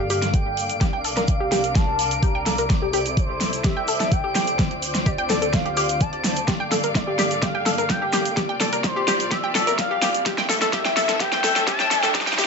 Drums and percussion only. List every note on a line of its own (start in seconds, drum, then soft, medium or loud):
0.10 open hi-hat loud
0.10 cabasa medium
0.22 snare soft
0.22 closed hi-hat medium
0.22 cabasa soft
0.34 kick loud
0.34 closed hi-hat medium
0.34 cabasa soft
0.57 open hi-hat medium
0.57 cabasa medium
0.69 closed hi-hat medium
0.69 cabasa medium
0.81 kick loud
0.81 snare medium
0.81 closed hi-hat medium
0.81 cabasa soft
1.04 open hi-hat loud
1.04 cabasa medium
1.17 snare soft
1.17 closed hi-hat medium
1.17 cabasa medium
1.27 kick loud
1.27 closed hi-hat medium
1.27 cabasa soft
1.52 snare medium
1.52 open hi-hat loud
1.52 cabasa medium
1.64 closed hi-hat medium
1.64 cabasa medium
1.75 kick loud
1.75 snare medium
1.75 closed hi-hat medium
1.75 cabasa soft
1.99 open hi-hat loud
1.99 cabasa medium
2.11 closed hi-hat medium
2.11 cabasa medium
2.23 kick loud
2.23 closed hi-hat medium
2.23 cabasa soft
2.46 snare medium
2.46 open hi-hat loud
2.46 cabasa loud
2.58 closed hi-hat medium
2.58 cabasa medium
2.70 kick loud
2.70 snare medium
2.70 closed hi-hat medium
2.70 cabasa soft
2.93 open hi-hat loud
2.93 cabasa loud
3.06 closed hi-hat soft
3.06 cabasa medium
3.17 kick loud
3.17 closed hi-hat medium
3.17 cabasa soft
3.41 snare medium
3.41 open hi-hat loud
3.41 cabasa loud
3.53 closed hi-hat soft
3.53 cabasa medium
3.64 kick loud
3.64 snare medium
3.64 closed hi-hat medium
3.64 cabasa soft
3.88 open hi-hat loud
3.88 cabasa loud
4.00 snare medium
4.00 closed hi-hat medium
4.00 cabasa medium
4.12 kick loud
4.12 closed hi-hat medium
4.12 cabasa soft
4.35 snare medium
4.35 open hi-hat loud
4.35 cabasa loud
4.47 closed hi-hat medium
4.47 cabasa medium
4.59 kick loud
4.59 snare medium
4.59 closed hi-hat medium
4.59 cabasa soft
4.71 closed hi-hat soft
4.82 open hi-hat loud
4.82 cabasa loud
4.95 snare medium
4.95 closed hi-hat soft
4.95 cabasa medium
5.06 kick loud
5.06 closed hi-hat medium
5.06 cabasa soft
5.18 closed hi-hat soft
5.29 snare medium
5.29 open hi-hat loud
5.29 cabasa medium
5.42 closed hi-hat soft
5.42 cabasa medium
5.53 kick loud
5.53 snare medium
5.53 closed hi-hat medium
5.53 cabasa soft
5.66 closed hi-hat soft
5.77 open hi-hat loud
5.77 cabasa medium
5.89 closed hi-hat soft
5.89 cabasa medium
6.01 kick loud
6.01 closed hi-hat medium
6.01 cabasa soft
6.13 closed hi-hat soft
6.24 snare medium
6.24 open hi-hat medium
6.24 cabasa loud
6.36 closed hi-hat soft
6.36 cabasa medium
6.47 kick loud
6.47 snare medium
6.47 closed hi-hat medium
6.47 cabasa soft
6.72 snare medium
6.72 open hi-hat loud
6.72 cabasa medium
6.83 closed hi-hat soft
6.83 cabasa soft
6.95 kick loud
6.95 snare medium
6.95 closed hi-hat medium
6.95 cabasa soft
7.19 snare medium
7.19 open hi-hat loud
7.19 cabasa loud
7.31 closed hi-hat soft
7.31 cabasa medium
7.42 kick loud
7.42 snare medium
7.42 closed hi-hat medium
7.42 cabasa soft
7.66 snare medium
7.66 open hi-hat loud
7.66 cabasa medium
7.78 closed hi-hat soft
7.78 cabasa medium
7.90 kick loud
7.90 snare medium
7.90 closed hi-hat medium
7.90 cabasa soft
8.13 snare medium
8.13 open hi-hat medium
8.13 cabasa loud
8.25 closed hi-hat soft
8.25 cabasa medium
8.37 kick loud
8.37 snare medium
8.37 closed hi-hat medium
8.37 cabasa soft
8.60 snare medium
8.60 open hi-hat loud
8.60 cabasa medium
8.73 closed hi-hat medium
8.73 cabasa soft
8.84 kick loud
8.84 snare medium
8.84 closed hi-hat medium
8.84 cabasa soft
9.08 snare medium
9.08 open hi-hat medium
9.08 cabasa loud
9.20 closed hi-hat medium
9.20 cabasa medium
9.31 kick loud
9.31 snare medium
9.31 closed hi-hat medium
9.31 cabasa soft
9.55 snare medium
9.55 open hi-hat loud
9.55 cabasa medium
9.67 closed hi-hat medium
9.67 cabasa soft
9.78 kick loud
9.78 snare medium
9.78 closed hi-hat medium
9.78 cabasa soft
10.02 snare medium
10.02 open hi-hat loud
10.02 cabasa medium
10.14 closed hi-hat medium
10.14 cabasa medium
10.26 kick loud
10.26 snare medium
10.26 closed hi-hat medium
10.26 cabasa soft
10.38 snare medium
10.49 snare medium
10.49 open hi-hat loud
10.49 cabasa medium
10.62 snare medium
10.62 closed hi-hat medium
10.62 cabasa soft
10.72 kick loud
10.72 snare loud
10.72 closed hi-hat medium
10.72 cabasa soft
10.85 snare medium
10.97 snare loud
10.97 open hi-hat medium
10.97 cabasa medium
11.09 snare medium
11.09 closed hi-hat medium
11.09 cabasa soft
11.20 kick loud
11.20 snare medium
11.20 closed hi-hat medium
11.20 cabasa soft
11.32 snare medium
11.44 snare loud
11.44 open hi-hat loud
11.44 cabasa medium
11.56 snare medium
11.56 closed hi-hat medium
11.56 cabasa medium
11.67 kick loud
11.67 snare loud
11.67 closed hi-hat medium
11.67 cabasa soft
11.80 snare medium
11.91 snare loud
11.91 open hi-hat medium
11.91 cabasa medium
12.03 snare medium
12.03 closed hi-hat medium
12.03 cabasa soft
12.14 kick loud
12.14 snare loud
12.14 closed hi-hat medium
12.14 cabasa soft
12.21 snare medium
12.27 snare medium
12.33 snare medium
12.38 snare loud
12.38 open hi-hat loud
12.38 cabasa medium